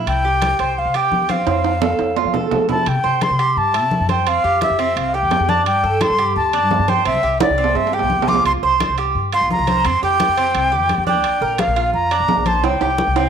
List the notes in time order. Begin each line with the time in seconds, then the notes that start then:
Already playing: E4
0.06 C2 G5, high conga, high timbale
0.24 G4, high conga
0.42 high conga, high timbale
0.59 C2 C5, high timbale
0.77 F5, high conga
0.85 C3
0.94 G4 G5, high conga, high timbale
1.11 E2, high conga
1.29 C4 F5, high conga, high timbale
1.47 F2 C4, high conga, high timbale
1.64 high conga, high timbale
1.82 A4, high conga, low timbale
1.99 F2, high timbale
2.17 F4, low timbale
2.25 F3
2.34 A4, low conga, low timbale
2.51 F3, low conga, low timbale
2.69 E4 A5, low conga, low timbale
2.86 C3 G5, high conga, high timbale
3.04 C3 C5, high conga
3.21 C6, high conga, high timbale
3.30 C3
3.39 G4, high timbale
3.57 G2 A5, high conga
3.74 E4, high conga, high timbale
3.83 C3
3.91 high conga
4.00 F#2
4.09 C5 G5, high conga, high timbale
4.26 F2 C4 F5, high conga, high timbale
4.44 F2 G4, high conga
4.61 E5, high conga, high timbale
4.70 F2
4.79 C4, high timbale
4.96 C2 F5, high conga, high timbale
5.14 G4 G5, high conga
5.23 F2
5.31 high conga, high timbale, low timbale
5.40 F2
5.49 D4 A5, high conga
5.66 G2 G5, high conga, high timbale
5.83 G2 A4, high conga
6.01 C6, high conga, high timbale
6.10 G2
6.19 G4, high timbale
6.36 D2 A5, high conga
6.53 D4, high conga, high timbale
6.62 G2
6.71 high conga, low timbale
6.79 G2
6.88 C5 G5, high conga, high timbale
7.05 C2 C4 E5, high conga, high timbale
7.23 C2 G4, high conga
7.40 D5, high conga, high timbale
7.49 C2
7.58 C4
7.64 low timbale
7.75 G2 E5, high conga, low timbale
7.87 low timbale
7.93 G4 G5, high conga
7.99 C2, low timbale
8.10 high conga
8.19 C2, low timbale
8.28 F4 D6, high conga
8.34 low timbale
8.45 C2 C6, high conga, high timbale
8.63 C2 C5 C6, high conga
8.80 high conga, high timbale
8.89 C2
8.98 G4, high timbale
9.15 G2, high conga
9.32 F4 C6, high conga, high timbale
9.41 C2
9.50 A#5, high conga
9.59 C2
9.67 C5, high conga, high timbale
9.85 F2 C4 C6, high timbale
10.02 F2 G4 G5, high conga
10.20 high conga, high timbale
10.28 F2
10.37 C4, high timbale
10.55 C2, high conga, high timbale
10.72 G4, high conga
10.80 F2
10.89 high conga, high timbale
10.98 F2
11.07 D4 G5, high conga
11.24 A#1, high conga, high timbale
11.41 A#1 A#4, high conga
11.58 F5, high conga, high timbale
11.67 A#1
11.76 F4, high timbale
11.94 F2 A#5, high conga
12.11 D4, high conga, high timbale
12.20 A#1
12.28 high conga, low timbale
12.37 A#1
12.46 C5 A5, high conga, high timbale
12.63 C2 C4 G5, high conga, high timbale
12.81 C2 G4, high conga, high timbale
12.98 high conga
13.07 C2
13.16 C4, high timbale